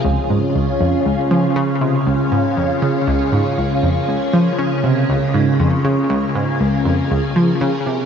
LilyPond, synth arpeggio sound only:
\new Staff \with { instrumentName = "Synth arpeggio sound" } { \clef bass \time 4/4 \key des \major \tempo 4 = 119 des,8 aes,8 des,8 f,8 des,8 f8 des8 c8 | des,8 aes,8 f,8 des8 des,8 aes,8 des,8 f,8 | des,8 f8 des8 c8 des,8 aes,8 f,8 des8 | des,8 aes,8 des,8 f,8 des,8 f8 des8 c8 | }